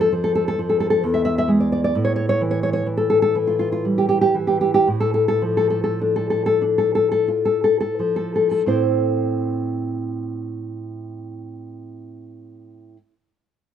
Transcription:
0.00 0.99 F2 soft
0.00 0.11 F3 soft
0.00 0.12 A4 medium
0.12 0.58 F3 soft
0.24 0.34 A4 medium
0.35 0.46 A4 medium
0.48 0.58 A4 medium
0.59 1.04 F3 soft
0.69 0.79 A4 medium
0.80 0.89 A4 medium
0.90 1.02 A4 medium
1.04 1.92 E2 soft
1.14 1.24 E5 medium
1.25 1.37 E5 medium
1.38 1.49 E5 medium
1.48 1.94 G#3 soft
1.60 1.71 D5 medium
1.72 1.83 D5 medium
1.84 1.95 D5 medium
1.95 4.83 A2 soft
2.05 2.15 C#5 medium
2.16 2.28 C#5 medium
2.29 2.41 C#5 medium
2.41 2.85 E3 soft
2.51 2.62 C#5 medium
2.63 2.72 C#5 medium
2.73 2.86 C#5 medium
2.86 3.34 E3 soft
2.97 3.09 A4 medium
3.10 3.21 A4 medium
3.22 3.35 A4 medium
3.35 4.33 E3 soft
3.47 3.58 F4 soft
3.59 3.71 F4 medium
3.72 3.84 F4 medium
3.85 4.87 G3 soft
3.98 4.07 G4 medium
4.09 4.20 G4 medium
4.21 4.34 G4 medium
4.34 4.87 E3 soft
4.47 4.60 G4 medium
4.61 4.73 G4 medium
4.74 4.87 G4 medium
4.87 8.64 A2 soft
5.00 5.13 A4 medium
5.14 5.27 A4 medium
5.28 5.42 A4 medium
5.42 7.27 F3 soft
5.57 5.69 A4 medium
5.70 5.83 A4 medium
5.84 5.99 A4 medium
6.01 6.60 D4 soft
6.16 6.29 A4 medium
6.30 6.45 A4 medium
6.46 6.61 A4 medium
6.62 8.67 D4 soft
6.78 6.94 A4 medium
6.95 7.10 A4 medium
7.12 7.28 A4 medium
7.28 8.67 F4 soft
7.45 7.62 A4 soft
7.64 7.79 A4 medium
7.81 7.98 A4 medium
7.99 8.66 F3 soft
8.16 8.33 A4 soft
8.36 8.50 A4 soft
8.51 8.66 A4 soft
8.66 12.96 A2 soft
8.66 12.96 C4 soft
8.66 12.97 E4 soft
8.66 12.97 A4 soft
8.66 12.98 C5 soft

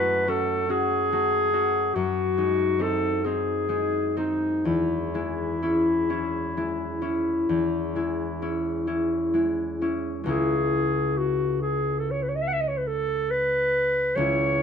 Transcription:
0.00 1.94 F#2 soft
0.00 1.11 A3 soft
0.00 0.26 C#4 soft
0.00 0.27 F#4 soft
0.00 0.31 B4 medium
0.28 0.68 C#4 soft
0.28 0.68 F#4 soft
0.28 0.72 A4 medium
0.69 1.52 C#4 soft
0.69 1.11 F#4 soft
0.69 1.96 G#4 medium
1.12 2.00 A3 soft
1.12 1.52 F#4 soft
1.53 1.99 C#4 soft
1.53 4.69 F#4 soft
1.95 4.69 F#2 soft
1.95 2.83 F#4 medium
2.38 3.67 G#3 soft
2.38 2.78 D#4 soft
2.79 3.23 C4 soft
2.79 3.25 D#4 soft
2.79 3.26 A4 medium
3.24 4.16 C4 soft
3.24 3.68 D#4 soft
3.24 4.17 G#4 soft
3.69 5.13 G#3 soft
3.69 4.16 D#4 soft
4.17 4.69 C4 soft
4.17 4.69 D#4 soft
4.17 4.65 D#4 soft
4.65 7.48 E2 soft
4.65 9.77 E4 soft
5.14 6.56 G#3 soft
5.14 5.61 E4 soft
5.62 6.08 C#4 soft
5.62 6.09 E4 soft
6.10 7.00 C#4 soft
6.10 6.56 E4 soft
6.57 7.95 G#3 soft
6.57 7.01 E4 soft
7.02 8.41 C#4 soft
7.02 7.95 E4 soft
7.49 10.29 E2 soft
7.95 9.32 G#3 soft
7.95 8.41 E4 soft
8.42 8.86 C#4 soft
8.42 8.86 E4 soft
8.87 9.80 C#4 soft
8.87 9.34 E4 soft
9.34 10.23 G#3 soft
9.34 9.81 E4 soft
9.82 10.25 C#4 soft
9.82 10.25 E4 soft
10.24 14.16 C#2 soft
10.24 14.14 G#3 soft
10.24 14.16 C#4 soft
10.28 14.16 E4 soft
10.28 11.19 G#4 medium
11.18 11.59 F#4 medium
11.62 12.00 G#4 medium
11.99 12.12 A4 soft
12.11 12.24 C#5 soft
12.23 12.30 B4 soft
12.29 12.37 C#5 soft
12.36 12.44 D#5 soft
12.42 12.49 E5 soft
12.48 12.55 F#5 soft
12.53 12.62 E5 soft
12.61 12.69 D#5 soft
12.68 12.79 C#5 soft
12.78 12.88 B4 soft
12.87 13.32 A4 medium
13.31 14.18 B4 medium
14.16 14.62 C#2 soft
14.16 14.62 G#3 soft
14.16 14.62 C#4 soft
14.16 14.62 E4 soft
14.16 14.62 C#5 medium

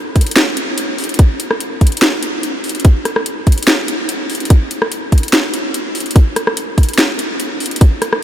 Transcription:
0.16 kick medium
0.16 closed hi-hat medium
0.21 closed hi-hat medium
0.27 closed hi-hat medium
0.31 closed hi-hat medium
0.36 snare loud
0.36 closed hi-hat medium
0.57 closed hi-hat medium
0.78 closed hi-hat medium
0.98 open hi-hat medium
1.04 closed hi-hat medium
1.09 closed hi-hat medium
1.14 closed hi-hat medium
1.19 kick loud
1.19 closed hi-hat medium
1.40 closed hi-hat medium
1.51 cross-stick medium
1.60 closed hi-hat medium
1.81 kick medium
1.81 closed hi-hat soft
1.87 closed hi-hat medium
1.92 closed hi-hat medium
1.97 closed hi-hat medium
2.02 snare loud
2.02 closed hi-hat medium
2.23 closed hi-hat medium
2.43 closed hi-hat medium
2.64 open hi-hat medium
2.69 closed hi-hat medium
2.75 closed hi-hat soft
2.80 closed hi-hat medium
2.85 kick loud
2.85 closed hi-hat medium
3.05 cross-stick medium
3.05 closed hi-hat medium
3.16 cross-stick medium
3.26 closed hi-hat medium
3.47 kick medium
3.47 closed hi-hat soft
3.52 closed hi-hat medium
3.58 closed hi-hat soft
3.63 closed hi-hat medium
3.67 snare loud
3.67 closed hi-hat medium
3.88 closed hi-hat medium
4.09 closed hi-hat medium
4.30 open hi-hat medium
4.35 closed hi-hat medium
4.40 closed hi-hat soft
4.45 closed hi-hat medium
4.50 kick loud
4.50 closed hi-hat medium
4.71 closed hi-hat medium
4.82 cross-stick medium
4.92 closed hi-hat medium
5.12 kick medium
5.12 closed hi-hat soft
5.18 closed hi-hat medium
5.23 closed hi-hat soft
5.28 closed hi-hat medium
5.33 snare loud
5.33 closed hi-hat medium
5.54 closed hi-hat medium
5.74 closed hi-hat medium
5.95 open hi-hat medium
6.00 closed hi-hat medium
6.06 closed hi-hat soft
6.11 closed hi-hat medium
6.16 kick loud
6.16 closed hi-hat medium
6.36 cross-stick medium
6.36 closed hi-hat medium
6.47 cross-stick medium
6.57 closed hi-hat medium
6.78 kick medium
6.78 closed hi-hat soft
6.83 closed hi-hat medium
6.89 closed hi-hat soft
6.93 closed hi-hat medium
6.98 snare loud
6.98 closed hi-hat medium
7.19 closed hi-hat medium
7.40 closed hi-hat medium
7.60 open hi-hat medium
7.66 closed hi-hat medium
7.71 closed hi-hat soft
7.76 closed hi-hat medium
7.81 kick loud
7.81 closed hi-hat medium
8.02 cross-stick medium
8.02 closed hi-hat medium
8.13 cross-stick medium

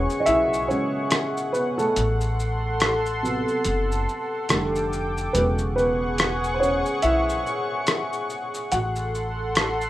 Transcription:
0.00 0.69 C#3 soft
0.00 0.69 F#3 soft
0.00 0.70 G#3 medium
0.00 1.55 B3 medium
0.00 0.19 C#4 medium
0.00 1.92 G#4 medium
0.00 1.98 G#4 medium
0.00 1.52 B4 loud
0.00 0.18 C#5 medium
0.00 4.45 F#5 medium
0.00 1.92 C#6 medium
0.10 shaker soft
0.20 0.26 D#5 medium
0.26 0.67 B1 medium
0.26 0.37 E4 medium
0.26 0.35 E5 loud
0.26 closed hi-hat medium
0.26 shaker medium
0.54 shaker soft
0.68 1.07 C#3 soft
0.68 1.07 F#3 soft
0.68 1.07 G#3 soft
0.68 1.50 C#4 medium
0.68 1.55 C#5 medium
0.68 shaker soft
1.10 cross-stick loud
1.10 closed hi-hat medium
1.10 shaker medium
1.37 shaker soft
1.52 1.77 B3 medium
1.52 1.78 B4 medium
1.52 shaker soft
1.78 3.44 A3 medium
1.78 3.43 A4 medium
1.78 shaker soft
1.95 3.43 A1 loud
1.95 5.30 A4 medium
1.95 4.46 C6 medium
1.95 closed hi-hat medium
1.95 shaker medium
2.21 shaker soft
2.40 shaker soft
2.80 cross-stick loud
2.80 closed hi-hat medium
2.80 shaker medium
3.06 shaker soft
3.23 3.81 C3 medium
3.23 3.82 F#3 soft
3.23 3.82 B3 medium
3.23 shaker soft
3.48 shaker soft
3.64 4.05 F#1 medium
3.64 closed hi-hat medium
3.64 shaker medium
3.92 shaker medium
4.09 shaker soft
4.49 5.30 F1 loud
4.49 5.08 D3 medium
4.49 5.08 G3 medium
4.49 5.09 A3 medium
4.49 5.32 G5 medium
4.49 5.32 D6 medium
4.49 cross-stick loud
4.49 closed hi-hat medium
4.49 shaker medium
4.75 shaker soft
4.93 shaker soft
5.18 shaker soft
5.33 6.82 E1 loud
5.33 6.57 C#3 soft
5.33 6.57 F#3 soft
5.33 6.57 G#3 medium
5.33 5.45 B3 medium
5.33 8.68 G#4 medium
5.33 5.43 B4 medium
5.33 8.68 F#5 medium
5.33 8.68 C#6 medium
5.33 closed hi-hat medium
5.33 shaker medium
5.59 shaker soft
5.76 6.51 B3 medium
5.76 6.50 B4 medium
5.76 shaker soft
6.18 cross-stick loud
6.18 closed hi-hat medium
6.18 shaker medium
6.44 shaker soft
6.54 6.60 C5 medium
6.60 6.71 C#4 medium
6.60 6.70 C#5 medium
6.60 shaker soft
6.86 shaker soft
7.02 7.43 B1 medium
7.02 8.68 E4 medium
7.02 8.77 E5 loud
7.02 closed hi-hat medium
7.02 shaker medium
7.30 shaker medium
7.47 shaker soft
7.87 cross-stick loud
7.87 closed hi-hat medium
7.87 shaker medium
8.13 shaker soft
8.30 shaker soft
8.55 shaker soft
8.71 9.90 A1 medium
8.71 9.90 F#4 medium
8.71 9.90 A4 medium
8.71 9.90 F#5 medium
8.71 9.90 C6 medium
8.71 closed hi-hat medium
8.71 shaker medium
8.96 shaker soft
9.15 shaker soft
9.55 cross-stick loud
9.55 closed hi-hat medium
9.55 shaker medium
9.81 shaker soft

